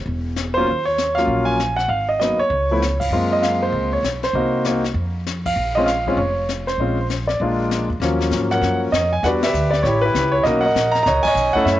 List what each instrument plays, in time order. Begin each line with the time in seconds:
0.06 upright bass E1, brush sweep
0.36 snare, hi-hat pedal
0.54 grand piano F#3 A#3 C#4 F4 C5
0.67 upright bass D#2, brush sweep
0.85 grand piano C#5
0.98 snare, hi-hat pedal
1.15 grand piano F#3 A#3 C#4 F4 F5, snare
1.27 upright bass A#1, brush sweep
1.45 grand piano G#5
1.60 snare, hi-hat pedal
1.76 grand piano F#5, snare
1.88 upright bass G#1, grand piano F5, brush sweep
2.09 grand piano D#5
2.20 grand piano F#3 A#3 B3 D#4 D#5, snare, hi-hat pedal
2.38 grand piano C#5, muted upright bass stroke
2.50 upright bass C#2, brush sweep
2.71 grand piano F3 A3 B3 E4
2.82 snare, hi-hat pedal
3.00 grand piano F5, kick, ride
3.11 upright bass F#2, grand piano G#3 A#3 C4 F4, brush sweep
3.32 grand piano D#5
3.42 grand piano F5, snare, hi-hat pedal
3.62 grand piano C5
3.72 upright bass C#2, brush sweep
3.93 grand piano C#5
4.03 upright bass B1, grand piano C#5, snare, hi-hat pedal
4.23 grand piano C5, snare
4.33 upright bass C2, grand piano A#3 C4 D#4 F#4, brush sweep
4.65 grand piano A#3 C4 D#4 F#4, snare, hi-hat pedal
4.84 snare
4.94 upright bass F2, brush sweep
5.26 snare, hi-hat pedal
5.46 grand piano F5, kick, ride
5.56 upright bass A#1, brush sweep
5.75 grand piano G#3 C4 C#4 F4 D#5
5.86 grand piano F5, snare, hi-hat pedal
6.07 grand piano G#3 C4 C#4 F4, kick
6.17 upright bass F1, grand piano C#5, brush sweep
6.49 snare, hi-hat pedal
6.67 grand piano C5, snare
6.78 upright bass A#1, grand piano G#3 C4 C#4 F4, brush sweep
7.10 snare, hi-hat pedal
7.27 grand piano D5, snare
7.40 upright bass A#1, grand piano G#3 A#3 D4 F4, brush sweep
7.71 snare, hi-hat pedal
7.89 upright bass E2
8.00 upright bass D#2, grand piano F3 F#3 A#3 C#4, brush sweep, snare
8.21 snare
8.31 upright bass G#2, snare, hi-hat pedal
8.51 grand piano A#4 C#5 F#5, snare
8.61 upright bass F#2, brush sweep, snare
8.92 upright bass F2, grand piano D#5, snare, hi-hat pedal
9.13 grand piano G#5
9.23 upright bass E2, grand piano G3 B3 D4 F#4 B4 F#5, brush sweep, snare
9.27 grand piano D5
9.43 grand piano G4 B4 E5, snare, ride
9.53 upright bass D2, hi-hat pedal
9.71 grand piano D5, snare
9.83 upright bass A1, grand piano C#5, brush sweep, snare
9.87 grand piano E4 G4
10.01 grand piano E4 B4
10.06 grand piano G4
10.14 upright bass C#2, snare, hi-hat pedal
10.32 grand piano C#5
10.43 upright bass B1, grand piano A#3 C#4 D#4 F#4 A#4 D#5, brush sweep, snare
10.61 grand piano F#5
10.66 grand piano A#4 D#5
10.75 upright bass A#1, snare, hi-hat pedal
10.92 grand piano A#5, snare
11.03 upright bass C#2, grand piano A#5, brush sweep, snare
11.07 grand piano C#5 D#5
11.23 grand piano G#5, muted upright bass stroke, kick, crash
11.27 grand piano C#5 D#5
11.35 upright bass B1, hi-hat pedal
11.53 grand piano A3 C#4 E4 A4 F#5, muted upright bass stroke, kick
11.65 upright bass F#2, grand piano A4 C#5 E5, brush sweep, snare